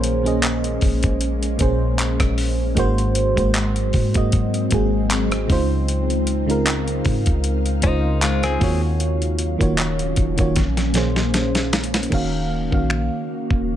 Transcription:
Already playing: A#1 A#2 G#3 A#3 C#4 G#4 C5
0.04 closed hi-hat
0.23 A#2 A#3 C#4 G#4, closed hi-hat
0.27 D#5
0.43 clap, closed hi-hat
0.64 closed hi-hat
0.81 A#1, kick, open hi-hat
1.03 kick, closed hi-hat
1.21 closed hi-hat
1.43 closed hi-hat
1.58 A#1 A#2 A#3 C#4 G#4, kick, closed hi-hat
1.62 C5
1.99 clap, closed hi-hat
2.20 A#1, kick, cross-stick, closed hi-hat
2.38 open hi-hat
2.75 G#1 G#2 F#3 G#3 A#3 C4 F#4, kick, closed hi-hat
2.79 C5
2.98 closed hi-hat
3.15 closed hi-hat
3.35 G#1 G#2 G#3 A#3 F#4, kick, closed hi-hat
3.39 C5
3.55 clap, closed hi-hat
3.76 closed hi-hat
3.93 G#2, kick, open hi-hat
4.13 G#2 G#3 A#3 F#4, kick, closed hi-hat
4.17 D#5
4.32 kick, closed hi-hat
4.54 closed hi-hat
4.70 G#1 G#2 G#3 A#3 F#4, kick, closed hi-hat
4.74 G#4
5.10 clap, closed hi-hat
5.32 cross-stick, closed hi-hat
5.48 C#2 C#3 G#3 D#4 F4 F5, kick, open hi-hat
5.52 C5
5.88 closed hi-hat
6.10 closed hi-hat
6.27 closed hi-hat
6.46 C#3 G#3 D#4 F4, closed hi-hat
6.51 A#4
6.66 clap, closed hi-hat
6.88 closed hi-hat
7.05 G#2, kick, open hi-hat
7.26 C#2, kick, closed hi-hat
7.44 closed hi-hat
7.66 closed hi-hat
7.81 C#2 C#3 G#3 D#4 F4, kick, closed hi-hat
7.86 C5
8.22 G#3 F4, clap, closed hi-hat
8.43 C4 G#4, cross-stick, closed hi-hat
8.59 D#2 D#3 F#3 A#3 C#4 F4 F#4, kick, open hi-hat
8.64 C#5
9.00 closed hi-hat
9.22 closed hi-hat
9.39 closed hi-hat
9.58 D#1 D#3 A#3 F4 F#4, kick, closed hi-hat
9.62 C#5
9.78 clap, closed hi-hat
9.99 closed hi-hat
10.16 D#1, kick, closed hi-hat
10.36 D#1 D#3 A#3 F4 F#4, kick, closed hi-hat
10.41 C#5
10.56 A#1 G#3, kick, snare, closed hi-hat
10.77 snare, closed hi-hat
10.93 A#2 A#3 C#4 G#4, snare, closed hi-hat
10.97 C5
11.16 snare
11.34 snare, closed hi-hat
11.55 snare, closed hi-hat
11.73 snare, closed hi-hat, open hi-hat
11.84 closed hi-hat
11.94 snare, closed hi-hat
12.03 closed hi-hat
12.10 D#1 C#3 D#3 A#3 C#4 F#4 F5, kick, crash
12.14 F5
12.70 A#1 D#3 A#3 C#4 F#4, kick
12.74 F5
12.90 finger snap
13.51 D#1, kick

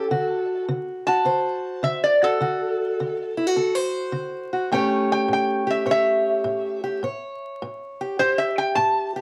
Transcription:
Already playing: A4
0.11 D3 F#4
0.68 D3
1.07 F#4 A5
1.25 D3 C5
1.83 D3 E5
2.04 D5
2.22 F#4 A4
2.40 D3 F#4
3.00 D3
3.37 E4
3.47 F#4
3.56 D3 A4
3.75 C5
4.12 D3
4.53 F#4
4.71 A2 A3 C#4 G4 C#5 G5
5.12 G5
5.28 A2
5.33 G5
5.67 G4 E5
5.86 A2 C#5
5.91 E5
6.44 A2
6.84 G4
7.03 A2 C#5
7.62 A2
8.01 G4
8.19 A2 G4 C5
8.38 E5
8.58 G5
8.75 A2 A5
9.16 G4

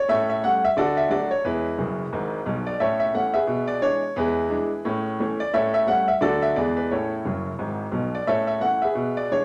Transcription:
0.08 A2 C#4 A4 C#5 E5
0.30 E5
0.43 G3 A3 C#4 F#5
0.65 E5
0.77 D3 F#4 A4 D5
0.97 E5
1.10 F#3 A3 D4 F#4 A4 D5
1.31 C#5
1.44 E2 G#3 E4 G#4 B4
1.78 F#1 F#2
2.13 G#1 G#2
2.46 B1 B2
2.67 D5
2.80 A2 C#4 A4 C#5 E5
3.00 E5
3.14 E3 A3 C#4 F#5
3.34 G#4 B4 E5
3.47 B2
3.67 D5
3.81 E3 G#3 D4 C#5
4.16 E2 G#3 E4 G#4 B4
4.50 E3 G#3 D4
4.85 A2 C#4
5.20 E3 A3 C#4
5.40 D5
5.53 A2 C#4 A4 C#5 E5
5.74 E5
5.86 G3 A3 C#4 F#5
6.08 E5
6.21 D3 F#3 A3 D4 F#4 A4 D5
6.42 E5
6.56 E2 E3 G#3 B3 G#4 B4 D5
6.77 B4
6.91 A2 C#4 E4 A4 C#5
7.25 F#1 F#2
7.59 G#1 G#2
7.92 B1 B2
8.15 D5
8.27 A2 C#4 A4 C#5 E5
8.47 E5
8.61 E3 A3 C#4 F#5
8.82 G#4 B4 E5
8.95 B2
9.17 D5
9.31 E3 G#3 D4 C#5

